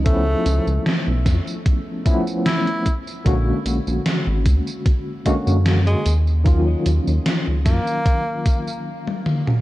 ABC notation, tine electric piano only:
X:1
M:4/4
L:1/8
Q:"Swing 16ths" 1/4=75
K:Ebdor
V:1 name="Tine electric piano"
[F,=A,_CD=E]4- [F,A,CDE] [F,A,CDE]2 z | [=D,A,B,^C^F]4- [D,A,B,CF] [D,A,B,CF]2 z | [E,G,B,DF]4- [E,G,B,DF] z3 |]